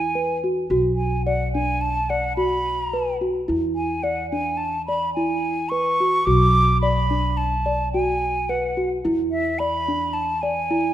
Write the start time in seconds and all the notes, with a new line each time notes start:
Already playing: E2 G#5
0.15 B4
0.44 F#4
0.70 B1 F#4
0.96 G#5
1.25 D5 F#5
1.53 D4 G#5
1.81 A5
2.10 D5 F#5
2.36 F#4 B5
2.93 B4
3.21 F#4
3.48 E2 E4
3.75 G#5
4.03 D5 F#5
4.31 D4 G#5
4.57 A5
4.86 D5 B5
5.14 E4 G#5
5.69 B4 C#6
6.00 F#4
6.25 B1 F#4 D6
6.81 D5 B5
7.10 D4
7.37 A5
7.66 D5
7.93 F#4 G#5
8.49 B4 F#5
8.77 F#4
9.05 E2 E4
9.31 E5
9.59 D5 B5
9.88 D4
10.13 A5
10.41 D5 G#5
10.71 E4